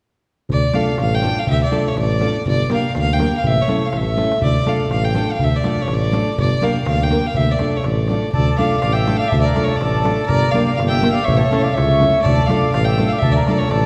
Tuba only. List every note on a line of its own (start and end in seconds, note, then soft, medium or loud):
0.49 0.64 D2 medium
0.98 1.27 A1 medium
1.47 1.62 D2 medium
1.96 2.25 A1 medium
2.46 2.60 G1 medium
2.95 3.24 D2 medium
3.43 3.58 A1 medium
3.93 4.22 A1 medium
4.41 4.56 D2 medium
4.89 5.19 A1 medium
5.39 5.53 D2 medium
5.87 6.17 A1 medium
6.37 6.52 G1 medium
6.86 7.16 D2 medium
7.35 7.50 D2 medium
7.85 8.14 A1 medium
8.35 8.49 D2 medium
8.83 9.12 A1 medium
9.33 9.47 D2 loud
9.81 10.10 A1 medium
10.29 10.44 G1 medium
10.78 11.07 G1 medium
11.27 11.42 A1 medium
11.75 12.05 C#2 medium
12.25 12.40 D2 medium
12.73 13.03 A1 medium
13.23 13.38 D2 medium
13.72 13.86 A1 medium